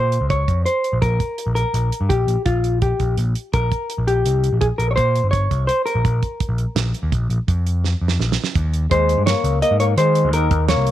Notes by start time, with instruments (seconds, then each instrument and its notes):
Already playing: picked electric bass A#2, hollow-body jazz guitar C5
0.12 closed hi-hat
0.21 picked electric bass C#2
0.30 hollow-body jazz guitar C#5, kick, closed hi-hat
0.48 picked electric bass F2, kick, closed hi-hat
0.66 hollow-body jazz guitar C5, closed hi-hat
0.84 closed hi-hat
0.93 picked electric bass A#1
1.02 picked electric bass A#1, hollow-body jazz guitar A#4, kick, closed hi-hat
1.20 kick, closed hi-hat
1.38 closed hi-hat
1.47 picked electric bass A#1
1.55 hollow-body jazz guitar A#4, closed hi-hat
1.74 picked electric bass A#1, closed hi-hat
1.92 closed hi-hat
2.01 picked electric bass G2
2.09 picked electric bass A#1, hollow-body jazz guitar G4, kick, closed hi-hat
2.27 picked electric bass A#1, closed hi-hat
2.46 picked electric bass A#1, hollow-body jazz guitar F4, kick, closed hi-hat
2.64 closed hi-hat
2.82 hollow-body jazz guitar G4, kick, closed hi-hat
3.00 picked electric bass A#1, kick, closed hi-hat
3.17 picked electric bass A#1, closed hi-hat
3.35 closed hi-hat
3.53 picked electric bass A#1, hollow-body jazz guitar A#4, kick, closed hi-hat
3.72 kick, closed hi-hat
3.90 closed hi-hat
3.98 picked electric bass A#1
4.07 hollow-body jazz guitar G4, closed hi-hat
4.26 picked electric bass C2, closed hi-hat
4.44 closed hi-hat
4.53 picked electric bass A#1
4.61 picked electric bass A#1, hollow-body jazz guitar G#4, kick, closed hi-hat
4.78 picked electric bass A#1, hollow-body jazz guitar A#4, closed hi-hat
4.91 hollow-body jazz guitar C#5
4.96 picked electric bass A#2, hollow-body jazz guitar C5, kick, closed hi-hat
5.16 closed hi-hat
5.24 picked electric bass G1
5.31 hollow-body jazz guitar C#5, kick, closed hi-hat
5.51 picked electric bass C2, kick, closed hi-hat
5.67 hollow-body jazz guitar C5, closed hi-hat
5.86 hollow-body jazz guitar A#4, closed hi-hat
5.95 picked electric bass A#1
6.05 picked electric bass A#1, kick, closed hi-hat
6.23 kick, closed hi-hat
6.40 kick, closed hi-hat
6.49 picked electric bass A#1
6.58 closed hi-hat
6.76 picked electric bass A#1, snare, closed hi-hat
6.94 closed hi-hat
7.03 picked electric bass D#2
7.12 picked electric bass A#1, kick, closed hi-hat
7.30 picked electric bass A#1, closed hi-hat
7.48 picked electric bass F2, kick, closed hi-hat
7.67 closed hi-hat
7.84 snare
8.02 picked electric bass F2
8.08 snare
8.19 picked electric bass A#1, snare
8.32 snare
8.44 snare
8.55 picked electric bass D#2, kick, closed hi-hat
8.73 closed hi-hat
8.91 picked electric bass D#2, trombone G#3, hollow-body jazz guitar C5, kick, closed hi-hat
9.09 closed hi-hat
9.18 picked electric bass G2
9.26 trombone A#3, hollow-body jazz guitar C#5, snare, closed hi-hat
9.44 picked electric bass C#2, closed hi-hat
9.62 trombone A#3, hollow-body jazz guitar D#5, closed hi-hat
9.71 picked electric bass G#2
9.80 trombone A#3, hollow-body jazz guitar C#5, closed hi-hat
9.97 picked electric bass D#3, trombone G#3, hollow-body jazz guitar C5, closed hi-hat
10.15 closed hi-hat
10.24 picked electric bass D#2
10.33 trombone D#3, hollow-body jazz guitar A#4, closed hi-hat
10.51 picked electric bass D#2, kick, closed hi-hat
10.69 trombone A#3, hollow-body jazz guitar C#5, snare, closed hi-hat
10.77 picked electric bass C2
10.87 closed hi-hat